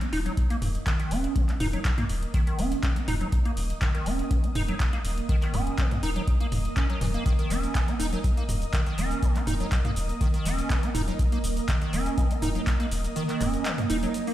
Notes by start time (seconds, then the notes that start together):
Already playing: A#3 A#4 D#5 D#6
0.01 C#4, closed hi-hat
0.13 D#1 D#4, open hi-hat
0.26 F#3, closed hi-hat
0.37 kick, closed hi-hat
0.50 A#3, closed hi-hat
0.62 D#1, mid tom, open hi-hat
0.75 closed hi-hat
0.86 D#3, kick, clap, closed hi-hat
1.00 D#3, closed hi-hat
1.11 D#1 C#4, open hi-hat
1.24 closed hi-hat
1.36 D#3, kick, closed hi-hat
1.49 C#4, clap, closed hi-hat
1.60 D#1 D#4, mid tom, open hi-hat
1.73 F#3, closed hi-hat
1.85 kick, clap, closed hi-hat
1.98 A#3, closed hi-hat, mid tom
2.09 D#1, open hi-hat
2.23 closed hi-hat
2.34 D#3, kick, closed hi-hat
2.47 D#3, closed hi-hat
2.59 D#1 C#4, open hi-hat
2.72 closed hi-hat
2.83 D#3, kick, clap, closed hi-hat
2.96 C#4, closed hi-hat
3.08 D#1 D#4, mid tom, open hi-hat
3.21 F#3, closed hi-hat
3.32 kick, closed hi-hat
3.45 A#3, closed hi-hat
3.57 D#1, open hi-hat
3.70 closed hi-hat
3.82 D#3, kick, clap, closed hi-hat
3.95 D#3, closed hi-hat
4.06 D#1 C#4, open hi-hat
4.19 closed hi-hat
4.31 D#3, kick, closed hi-hat
4.44 C#4, closed hi-hat
4.55 D#1 D#4, mid tom, open hi-hat
4.68 F#3, closed hi-hat
4.80 kick, clap, closed hi-hat
4.93 A#3, closed hi-hat
5.05 D#1, open hi-hat
5.18 closed hi-hat
5.29 D#3, kick, closed hi-hat
5.42 D#3, clap, closed hi-hat
5.54 D#1 C#4, mid tom, open hi-hat
5.67 closed hi-hat
5.78 D#3, kick, clap, closed hi-hat
5.91 C#4, closed hi-hat, mid tom
6.03 D#1 D#4, open hi-hat
6.16 F#3, closed hi-hat
6.27 kick, closed hi-hat
6.41 A#3, closed hi-hat
6.52 D#1, mid tom, open hi-hat
6.65 closed hi-hat
6.77 C#4, kick, clap, closed hi-hat
6.90 F#3, closed hi-hat
7.01 D#1 E3, mid tom, open hi-hat
7.14 A#3, closed hi-hat
7.26 D#3, kick, closed hi-hat, shaker
7.39 D#3, closed hi-hat, shaker
7.50 D#1 C#4, open hi-hat, shaker
7.63 closed hi-hat, shaker
7.75 D#3, kick, clap, closed hi-hat, shaker
7.88 C#4, closed hi-hat, shaker
8.00 D#1 D#4, open hi-hat, shaker
8.13 F#3, closed hi-hat, shaker
8.24 kick, closed hi-hat, shaker
8.37 A#3, closed hi-hat, shaker
8.49 D#1, mid tom, open hi-hat, shaker
8.62 closed hi-hat, shaker
8.73 D#3, kick, clap, closed hi-hat, shaker
8.86 D#3, closed hi-hat, shaker
8.98 D#1 C#4, open hi-hat, shaker
9.11 closed hi-hat, shaker
9.23 D#3, kick, closed hi-hat, shaker
9.36 C#4, clap, closed hi-hat, shaker
9.47 D#1 D#4, mid tom, open hi-hat, shaker
9.60 F#3, closed hi-hat, shaker
9.72 kick, clap, closed hi-hat, shaker
9.85 A#3, closed hi-hat, mid tom, shaker
9.96 D#1, open hi-hat, shaker
10.09 closed hi-hat, shaker
10.21 D#3, kick, closed hi-hat, shaker
10.34 D#3, closed hi-hat, shaker
10.45 D#1 C#4, open hi-hat, shaker
10.59 closed hi-hat, shaker
10.70 D#3, kick, clap, closed hi-hat, shaker
10.83 C#4, closed hi-hat, shaker
10.95 D#1 D#4, mid tom, open hi-hat, shaker
11.08 F#3, closed hi-hat, shaker
11.19 kick, closed hi-hat, shaker
11.32 A#3, closed hi-hat, shaker
11.44 D#1, open hi-hat, shaker
11.57 closed hi-hat, shaker
11.68 D#3, kick, clap, closed hi-hat, shaker
11.81 D#3, closed hi-hat, shaker
11.93 D#1 C#4, open hi-hat, shaker
12.06 closed hi-hat, shaker
12.18 D#3, kick, closed hi-hat, shaker
12.31 C#4, closed hi-hat, shaker
12.42 D#1 D#4, mid tom, open hi-hat, shaker
12.55 F#3, closed hi-hat, shaker
12.67 kick, clap, closed hi-hat, shaker
12.80 A#3, closed hi-hat, shaker
12.91 D#1, open hi-hat, shaker
13.04 closed hi-hat, shaker
13.16 D#3, closed hi-hat, shaker
13.29 D#3, clap, closed hi-hat, shaker
13.41 D#1 C#4, mid tom, open hi-hat, shaker
13.54 closed hi-hat, shaker
13.65 D#3, clap, closed hi-hat, shaker
13.78 C#4, closed hi-hat, mid tom, shaker
13.90 D#1 D#4, open hi-hat, shaker
14.03 F#3, closed hi-hat, shaker
14.14 closed hi-hat, shaker
14.27 A#3, open hi-hat, shaker